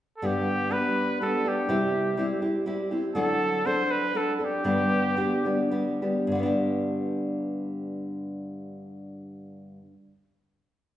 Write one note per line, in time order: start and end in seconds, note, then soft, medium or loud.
0.17 0.27 A4 medium
0.22 0.72 G2 medium
0.22 0.72 D3 medium
0.22 0.70 G3 medium
0.22 0.69 B3 medium
0.22 0.70 D4 medium
0.22 0.71 G4 medium
0.22 0.74 G4 medium
0.70 1.19 G3 soft
0.70 1.21 B3 medium
0.70 1.21 D4 soft
0.70 1.21 G4 medium
0.70 1.21 B4 medium
1.20 1.45 G3 soft
1.20 1.45 B3 soft
1.20 1.44 D4 medium
1.20 1.44 G4 soft
1.20 1.50 A4 medium
1.45 1.68 G3 soft
1.45 1.69 B3 soft
1.45 1.69 D4 soft
1.45 1.69 G4 soft
1.45 2.45 G4 medium
1.69 2.18 C3 medium
1.69 2.16 G3 medium
1.69 2.17 C4 medium
1.69 2.18 E4 medium
1.69 2.18 G4 medium
2.17 2.43 G3 medium
2.17 2.42 C4 medium
2.17 2.41 E4 medium
2.17 2.41 G4 medium
2.42 2.65 C4 soft
2.42 2.66 E4 soft
2.42 2.66 G4 medium
2.66 2.91 G3 medium
2.66 2.92 C4 medium
2.66 2.91 E4 medium
2.66 2.90 G4 medium
2.91 3.15 C4 soft
2.91 3.15 E4 soft
2.91 3.15 G4 soft
3.15 3.69 D3 medium
3.15 3.64 F#3 medium
3.15 3.65 C4 medium
3.15 3.66 D4 medium
3.15 3.68 A4 medium
3.15 3.65 A4 medium
3.65 4.12 F#3 medium
3.65 4.13 C4 soft
3.65 4.14 D4 medium
3.65 4.14 A4 medium
3.65 3.93 C5 medium
3.92 4.19 B4 medium
4.13 4.39 F#3 medium
4.13 4.40 C4 medium
4.13 4.39 D4 medium
4.13 4.38 A4 medium
4.17 4.35 A4 medium
4.35 4.46 A4 soft
4.35 4.64 A4 soft
4.40 4.64 C4 soft
4.40 4.63 D4 soft
4.45 5.75 G4 medium
4.64 5.17 G2 medium
4.64 6.31 D3 medium
4.64 5.16 G3 medium
4.64 5.16 B3 medium
4.64 5.17 D4 medium
4.64 5.18 G4 medium
5.16 5.45 G3 medium
5.16 5.45 B3 medium
5.16 5.44 D4 medium
5.16 5.44 G4 medium
5.45 5.70 G3 soft
5.45 5.71 B3 soft
5.45 5.70 D4 soft
5.45 5.71 G4 soft
5.71 6.01 G3 medium
5.71 6.01 B3 medium
5.71 6.01 D4 medium
5.71 6.01 G4 medium
6.02 6.32 G3 soft
6.02 6.31 B3 soft
6.02 6.31 D4 soft
6.02 6.31 G4 soft
6.27 9.77 G2 medium
6.32 9.82 D3 medium
6.32 9.85 G3 medium
6.39 9.89 B3 medium
6.39 9.93 D4 medium
6.46 9.96 G4 medium